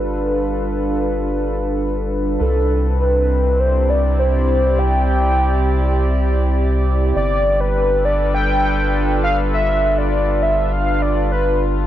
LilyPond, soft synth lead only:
\new Staff \with { instrumentName = "Soft synth lead" } { \time 4/4 \key c \major \tempo 4 = 101 b'2. r4 | a'4 b'4 c''8 d''8 c''4 | g''2 r2 | d''8. b'8. d''8 g''4. f''8 |
e''8. d''8. e''8 f''8 d''8 b'8. r16 | }